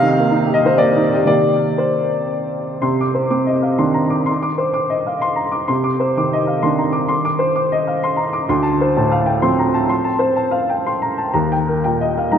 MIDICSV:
0, 0, Header, 1, 2, 480
1, 0, Start_track
1, 0, Tempo, 474308
1, 802, Tempo, 506757
1, 1279, Time_signature, 3, 2, 24, 8
1, 2722, Tempo, 486618
1, 4162, Tempo, 465839
1, 8962, Tempo, 483871
1, 12380, End_track
2, 0, Start_track
2, 0, Title_t, "Upright piano"
2, 0, Program_c, 0, 0
2, 0, Note_on_c, 0, 48, 65
2, 0, Note_on_c, 0, 77, 114
2, 4, Control_c, 0, 64, 127
2, 19, Note_on_c, 0, 51, 48
2, 178, Note_on_c, 0, 58, 47
2, 259, Note_off_c, 0, 51, 0
2, 312, Note_on_c, 0, 63, 43
2, 419, Note_off_c, 0, 58, 0
2, 469, Note_on_c, 0, 67, 47
2, 545, Note_on_c, 0, 75, 69
2, 553, Note_off_c, 0, 77, 0
2, 570, Note_off_c, 0, 63, 0
2, 649, Note_on_c, 0, 51, 43
2, 665, Note_on_c, 0, 72, 58
2, 672, Note_off_c, 0, 75, 0
2, 733, Note_off_c, 0, 67, 0
2, 789, Note_on_c, 0, 74, 81
2, 796, Note_off_c, 0, 72, 0
2, 808, Note_on_c, 0, 58, 45
2, 902, Note_off_c, 0, 51, 0
2, 962, Note_on_c, 0, 63, 42
2, 1058, Note_off_c, 0, 58, 0
2, 1126, Note_on_c, 0, 75, 51
2, 1127, Note_on_c, 0, 67, 36
2, 1153, Note_off_c, 0, 74, 0
2, 1214, Note_off_c, 0, 48, 0
2, 1216, Note_off_c, 0, 63, 0
2, 1228, Note_on_c, 0, 48, 40
2, 1238, Note_on_c, 0, 51, 35
2, 1245, Note_on_c, 0, 58, 34
2, 1248, Note_off_c, 0, 67, 0
2, 1255, Note_on_c, 0, 74, 72
2, 1263, Note_off_c, 0, 75, 0
2, 1263, Note_on_c, 0, 67, 33
2, 1297, Control_c, 0, 64, 0
2, 1468, Control_c, 0, 64, 127
2, 1738, Note_on_c, 0, 72, 45
2, 1747, Note_off_c, 0, 74, 0
2, 2471, Note_off_c, 0, 72, 0
2, 2658, Note_off_c, 0, 48, 0
2, 2664, Note_off_c, 0, 51, 0
2, 2667, Note_off_c, 0, 58, 0
2, 2676, Note_off_c, 0, 67, 0
2, 2718, Note_on_c, 0, 48, 53
2, 2719, Note_on_c, 0, 84, 45
2, 2739, Control_c, 0, 64, 0
2, 2887, Control_c, 0, 64, 127
2, 2907, Note_on_c, 0, 86, 43
2, 2980, Note_off_c, 0, 84, 0
2, 3044, Note_on_c, 0, 72, 38
2, 3152, Note_off_c, 0, 86, 0
2, 3199, Note_on_c, 0, 60, 32
2, 3201, Note_on_c, 0, 86, 40
2, 3298, Note_off_c, 0, 72, 0
2, 3360, Note_on_c, 0, 75, 39
2, 3456, Note_off_c, 0, 86, 0
2, 3514, Note_on_c, 0, 77, 34
2, 3616, Note_off_c, 0, 75, 0
2, 3671, Note_on_c, 0, 62, 37
2, 3672, Note_on_c, 0, 51, 38
2, 3673, Note_on_c, 0, 84, 41
2, 3677, Note_off_c, 0, 77, 0
2, 3827, Note_on_c, 0, 82, 37
2, 3935, Note_off_c, 0, 84, 0
2, 3968, Note_off_c, 0, 60, 0
2, 3986, Note_on_c, 0, 86, 40
2, 3995, Note_off_c, 0, 82, 0
2, 4120, Note_off_c, 0, 48, 0
2, 4143, Note_on_c, 0, 84, 47
2, 4178, Control_c, 0, 64, 0
2, 4251, Note_off_c, 0, 86, 0
2, 4312, Note_on_c, 0, 86, 45
2, 4352, Control_c, 0, 64, 127
2, 4411, Note_off_c, 0, 84, 0
2, 4471, Note_on_c, 0, 72, 36
2, 4574, Note_off_c, 0, 86, 0
2, 4632, Note_on_c, 0, 86, 40
2, 4733, Note_off_c, 0, 72, 0
2, 4800, Note_on_c, 0, 75, 47
2, 4894, Note_off_c, 0, 86, 0
2, 4971, Note_on_c, 0, 77, 36
2, 5060, Note_off_c, 0, 75, 0
2, 5126, Note_on_c, 0, 84, 48
2, 5129, Note_off_c, 0, 77, 0
2, 5273, Note_on_c, 0, 82, 37
2, 5384, Note_off_c, 0, 84, 0
2, 5437, Note_on_c, 0, 86, 44
2, 5441, Note_off_c, 0, 82, 0
2, 5563, Note_off_c, 0, 62, 0
2, 5564, Note_off_c, 0, 51, 0
2, 5603, Note_on_c, 0, 84, 47
2, 5607, Note_on_c, 0, 48, 46
2, 5629, Control_c, 0, 64, 0
2, 5701, Note_off_c, 0, 86, 0
2, 5769, Note_on_c, 0, 86, 42
2, 5792, Control_c, 0, 64, 127
2, 5865, Note_off_c, 0, 84, 0
2, 5932, Note_on_c, 0, 72, 40
2, 6029, Note_off_c, 0, 86, 0
2, 6112, Note_on_c, 0, 51, 31
2, 6115, Note_on_c, 0, 86, 37
2, 6191, Note_off_c, 0, 72, 0
2, 6276, Note_on_c, 0, 75, 46
2, 6361, Note_off_c, 0, 86, 0
2, 6421, Note_on_c, 0, 77, 34
2, 6521, Note_off_c, 0, 75, 0
2, 6566, Note_off_c, 0, 51, 0
2, 6577, Note_off_c, 0, 77, 0
2, 6579, Note_on_c, 0, 84, 48
2, 6582, Note_on_c, 0, 51, 38
2, 6585, Note_on_c, 0, 62, 37
2, 6739, Note_on_c, 0, 82, 35
2, 6831, Note_off_c, 0, 84, 0
2, 6888, Note_on_c, 0, 86, 43
2, 6896, Note_off_c, 0, 82, 0
2, 7010, Note_off_c, 0, 48, 0
2, 7052, Note_on_c, 0, 84, 48
2, 7071, Control_c, 0, 64, 0
2, 7145, Note_off_c, 0, 86, 0
2, 7205, Control_c, 0, 64, 127
2, 7222, Note_on_c, 0, 86, 51
2, 7306, Note_off_c, 0, 84, 0
2, 7366, Note_on_c, 0, 72, 45
2, 7470, Note_off_c, 0, 86, 0
2, 7538, Note_on_c, 0, 86, 43
2, 7621, Note_off_c, 0, 72, 0
2, 7709, Note_on_c, 0, 75, 50
2, 7786, Note_off_c, 0, 86, 0
2, 7865, Note_on_c, 0, 77, 37
2, 7949, Note_off_c, 0, 75, 0
2, 8011, Note_off_c, 0, 77, 0
2, 8031, Note_on_c, 0, 84, 51
2, 8166, Note_on_c, 0, 82, 40
2, 8267, Note_off_c, 0, 84, 0
2, 8319, Note_off_c, 0, 82, 0
2, 8336, Note_on_c, 0, 86, 46
2, 8437, Note_off_c, 0, 51, 0
2, 8438, Note_off_c, 0, 62, 0
2, 8485, Note_off_c, 0, 86, 0
2, 8495, Control_c, 0, 64, 0
2, 8498, Note_on_c, 0, 38, 57
2, 8504, Note_on_c, 0, 84, 52
2, 8625, Control_c, 0, 64, 127
2, 8641, Note_on_c, 0, 81, 49
2, 8747, Note_off_c, 0, 84, 0
2, 8832, Note_on_c, 0, 72, 45
2, 8898, Note_off_c, 0, 81, 0
2, 8989, Note_on_c, 0, 45, 43
2, 8992, Note_on_c, 0, 81, 45
2, 9072, Note_off_c, 0, 72, 0
2, 9139, Note_on_c, 0, 77, 51
2, 9228, Note_off_c, 0, 81, 0
2, 9283, Note_on_c, 0, 79, 42
2, 9380, Note_off_c, 0, 77, 0
2, 9436, Note_off_c, 0, 79, 0
2, 9438, Note_on_c, 0, 53, 40
2, 9442, Note_on_c, 0, 84, 55
2, 9443, Note_on_c, 0, 60, 46
2, 9608, Note_on_c, 0, 82, 44
2, 9689, Note_off_c, 0, 84, 0
2, 9730, Note_off_c, 0, 45, 0
2, 9756, Note_off_c, 0, 82, 0
2, 9759, Note_on_c, 0, 81, 50
2, 9876, Note_off_c, 0, 38, 0
2, 9909, Note_on_c, 0, 84, 47
2, 9925, Control_c, 0, 64, 0
2, 10005, Note_off_c, 0, 81, 0
2, 10058, Note_on_c, 0, 81, 50
2, 10077, Control_c, 0, 64, 127
2, 10159, Note_off_c, 0, 84, 0
2, 10205, Note_on_c, 0, 72, 52
2, 10313, Note_off_c, 0, 81, 0
2, 10375, Note_on_c, 0, 81, 45
2, 10466, Note_off_c, 0, 72, 0
2, 10524, Note_on_c, 0, 77, 52
2, 10632, Note_off_c, 0, 81, 0
2, 10706, Note_on_c, 0, 79, 40
2, 10787, Note_off_c, 0, 77, 0
2, 10862, Note_off_c, 0, 79, 0
2, 10873, Note_on_c, 0, 84, 45
2, 11027, Note_on_c, 0, 82, 40
2, 11122, Note_off_c, 0, 84, 0
2, 11182, Note_off_c, 0, 82, 0
2, 11184, Note_on_c, 0, 81, 41
2, 11301, Note_off_c, 0, 53, 0
2, 11304, Note_off_c, 0, 60, 0
2, 11341, Note_off_c, 0, 81, 0
2, 11341, Note_on_c, 0, 82, 46
2, 11343, Note_on_c, 0, 39, 48
2, 11357, Control_c, 0, 64, 0
2, 11522, Control_c, 0, 64, 127
2, 11522, Note_on_c, 0, 79, 44
2, 11599, Note_off_c, 0, 82, 0
2, 11684, Note_on_c, 0, 70, 46
2, 11771, Note_off_c, 0, 79, 0
2, 11842, Note_on_c, 0, 79, 43
2, 11847, Note_on_c, 0, 46, 34
2, 11934, Note_off_c, 0, 70, 0
2, 12008, Note_on_c, 0, 75, 44
2, 12095, Note_off_c, 0, 79, 0
2, 12174, Note_on_c, 0, 77, 38
2, 12261, Note_off_c, 0, 75, 0
2, 12308, Note_on_c, 0, 55, 38
2, 12314, Note_on_c, 0, 58, 34
2, 12314, Note_on_c, 0, 82, 45
2, 12319, Note_on_c, 0, 63, 41
2, 12328, Note_off_c, 0, 77, 0
2, 12380, Note_off_c, 0, 39, 0
2, 12380, Note_off_c, 0, 46, 0
2, 12380, Note_off_c, 0, 55, 0
2, 12380, Note_off_c, 0, 58, 0
2, 12380, Note_off_c, 0, 63, 0
2, 12380, Note_off_c, 0, 82, 0
2, 12380, End_track
0, 0, End_of_file